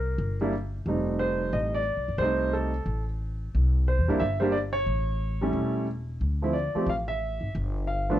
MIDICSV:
0, 0, Header, 1, 4, 480
1, 0, Start_track
1, 0, Tempo, 334821
1, 1231, Time_signature, 4, 2, 24, 8
1, 11747, End_track
2, 0, Start_track
2, 0, Title_t, "Grand piano"
2, 0, Program_c, 0, 0
2, 0, Note_on_c, 0, 70, 59
2, 510, Note_off_c, 0, 70, 0
2, 586, Note_on_c, 0, 55, 60
2, 591, Note_on_c, 0, 62, 52
2, 595, Note_on_c, 0, 58, 58
2, 601, Note_on_c, 0, 64, 64
2, 742, Note_off_c, 0, 55, 0
2, 745, Note_off_c, 0, 62, 0
2, 747, Note_off_c, 0, 58, 0
2, 750, Note_off_c, 0, 64, 0
2, 1249, Note_on_c, 0, 55, 49
2, 1262, Note_on_c, 0, 57, 43
2, 1267, Note_on_c, 0, 60, 43
2, 1269, Note_on_c, 0, 63, 55
2, 1711, Note_on_c, 0, 72, 78
2, 2193, Note_on_c, 0, 75, 72
2, 2206, Note_off_c, 0, 72, 0
2, 2498, Note_off_c, 0, 75, 0
2, 2499, Note_on_c, 0, 74, 78
2, 2571, Note_off_c, 0, 55, 0
2, 2577, Note_off_c, 0, 57, 0
2, 2580, Note_off_c, 0, 60, 0
2, 2581, Note_off_c, 0, 63, 0
2, 3127, Note_on_c, 0, 72, 86
2, 3162, Note_on_c, 0, 55, 47
2, 3171, Note_on_c, 0, 57, 49
2, 3175, Note_on_c, 0, 60, 47
2, 3177, Note_off_c, 0, 74, 0
2, 3186, Note_on_c, 0, 63, 58
2, 3631, Note_on_c, 0, 69, 67
2, 3635, Note_off_c, 0, 72, 0
2, 3874, Note_off_c, 0, 55, 0
2, 3879, Note_off_c, 0, 57, 0
2, 3881, Note_off_c, 0, 60, 0
2, 3886, Note_off_c, 0, 63, 0
2, 4354, Note_off_c, 0, 69, 0
2, 5556, Note_on_c, 0, 72, 71
2, 5848, Note_on_c, 0, 55, 63
2, 5859, Note_on_c, 0, 58, 61
2, 5861, Note_on_c, 0, 62, 63
2, 5876, Note_on_c, 0, 64, 73
2, 6010, Note_on_c, 0, 76, 83
2, 6013, Note_off_c, 0, 55, 0
2, 6019, Note_off_c, 0, 58, 0
2, 6020, Note_off_c, 0, 62, 0
2, 6028, Note_off_c, 0, 64, 0
2, 6049, Note_off_c, 0, 72, 0
2, 6296, Note_off_c, 0, 76, 0
2, 6305, Note_on_c, 0, 72, 65
2, 6312, Note_on_c, 0, 55, 63
2, 6329, Note_on_c, 0, 58, 57
2, 6336, Note_on_c, 0, 67, 70
2, 6339, Note_on_c, 0, 62, 56
2, 6484, Note_on_c, 0, 74, 75
2, 6486, Note_off_c, 0, 55, 0
2, 6494, Note_off_c, 0, 58, 0
2, 6498, Note_off_c, 0, 67, 0
2, 6499, Note_off_c, 0, 62, 0
2, 6507, Note_off_c, 0, 72, 0
2, 6555, Note_off_c, 0, 74, 0
2, 6781, Note_on_c, 0, 73, 90
2, 7762, Note_on_c, 0, 55, 61
2, 7773, Note_on_c, 0, 57, 56
2, 7779, Note_on_c, 0, 61, 56
2, 7786, Note_on_c, 0, 64, 58
2, 8361, Note_off_c, 0, 73, 0
2, 8392, Note_off_c, 0, 55, 0
2, 8398, Note_off_c, 0, 57, 0
2, 8400, Note_off_c, 0, 61, 0
2, 8404, Note_off_c, 0, 64, 0
2, 9207, Note_on_c, 0, 53, 55
2, 9214, Note_on_c, 0, 57, 50
2, 9228, Note_on_c, 0, 60, 50
2, 9232, Note_on_c, 0, 64, 62
2, 9363, Note_on_c, 0, 74, 66
2, 9373, Note_off_c, 0, 53, 0
2, 9376, Note_off_c, 0, 57, 0
2, 9383, Note_off_c, 0, 60, 0
2, 9385, Note_off_c, 0, 64, 0
2, 9677, Note_on_c, 0, 53, 57
2, 9685, Note_on_c, 0, 57, 52
2, 9690, Note_on_c, 0, 60, 59
2, 9695, Note_on_c, 0, 67, 58
2, 9823, Note_off_c, 0, 74, 0
2, 9848, Note_off_c, 0, 53, 0
2, 9852, Note_off_c, 0, 57, 0
2, 9854, Note_off_c, 0, 60, 0
2, 9857, Note_off_c, 0, 67, 0
2, 9883, Note_on_c, 0, 77, 78
2, 9955, Note_off_c, 0, 77, 0
2, 10149, Note_on_c, 0, 76, 86
2, 10775, Note_off_c, 0, 76, 0
2, 11289, Note_on_c, 0, 77, 69
2, 11609, Note_on_c, 0, 53, 67
2, 11612, Note_on_c, 0, 57, 59
2, 11624, Note_on_c, 0, 59, 61
2, 11630, Note_on_c, 0, 62, 67
2, 11746, Note_off_c, 0, 77, 0
2, 11747, Note_off_c, 0, 53, 0
2, 11747, Note_off_c, 0, 57, 0
2, 11747, Note_off_c, 0, 59, 0
2, 11747, Note_off_c, 0, 62, 0
2, 11747, End_track
3, 0, Start_track
3, 0, Title_t, "Upright bass"
3, 0, Program_c, 1, 32
3, 0, Note_on_c, 1, 36, 78
3, 219, Note_off_c, 1, 36, 0
3, 262, Note_on_c, 1, 31, 83
3, 1179, Note_off_c, 1, 31, 0
3, 1230, Note_on_c, 1, 29, 78
3, 2143, Note_off_c, 1, 29, 0
3, 2187, Note_on_c, 1, 33, 77
3, 2785, Note_off_c, 1, 33, 0
3, 2820, Note_on_c, 1, 36, 49
3, 2975, Note_off_c, 1, 36, 0
3, 2984, Note_on_c, 1, 31, 61
3, 3114, Note_off_c, 1, 31, 0
3, 3123, Note_on_c, 1, 36, 76
3, 4049, Note_off_c, 1, 36, 0
3, 4100, Note_on_c, 1, 33, 81
3, 5018, Note_off_c, 1, 33, 0
3, 5083, Note_on_c, 1, 36, 82
3, 5673, Note_off_c, 1, 36, 0
3, 5707, Note_on_c, 1, 40, 57
3, 5858, Note_off_c, 1, 40, 0
3, 5875, Note_on_c, 1, 37, 63
3, 6023, Note_off_c, 1, 37, 0
3, 6030, Note_on_c, 1, 31, 78
3, 6943, Note_off_c, 1, 31, 0
3, 6979, Note_on_c, 1, 33, 72
3, 7897, Note_off_c, 1, 33, 0
3, 7927, Note_on_c, 1, 28, 73
3, 8851, Note_off_c, 1, 28, 0
3, 8901, Note_on_c, 1, 38, 80
3, 9628, Note_off_c, 1, 38, 0
3, 9840, Note_on_c, 1, 33, 79
3, 10577, Note_off_c, 1, 33, 0
3, 10622, Note_on_c, 1, 32, 64
3, 10805, Note_off_c, 1, 32, 0
3, 10822, Note_on_c, 1, 31, 81
3, 11738, Note_off_c, 1, 31, 0
3, 11747, End_track
4, 0, Start_track
4, 0, Title_t, "Muted upright bass strokes"
4, 9673, Note_on_c, 9, 29, 32
4, 9817, Note_off_c, 9, 29, 0
4, 11747, End_track
0, 0, End_of_file